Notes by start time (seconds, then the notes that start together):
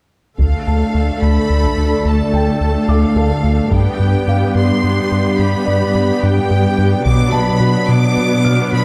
0.38 D2 A3 D4 A4 D5 F5, taiko
0.67 D2 A5
0.94 D2
1.22 D2 B5
1.50 D2
1.64 taiko
1.78 D2
2.05 D2 A5
2.33 D2 G5
2.61 D2
2.88 D2 F5 D6
3.16 D2 A4 A5
3.44 D2
3.71 G2 B3 D4 G4 D5 G5, taiko
4.00 G2
4.27 G2 F5
4.55 G2 C6
4.84 G2
5.12 G2
5.38 G2 B5
5.65 G2 D5
5.95 G2
6.21 G2 G5
6.50 G2 G5
6.79 G2
7.05 B2 F#3 B3 D4 D5 D6, taiko
7.32 B2 A5 B5
7.60 B2
7.89 B2 D6
8.17 B2
8.45 B2 F6
8.73 B2 B5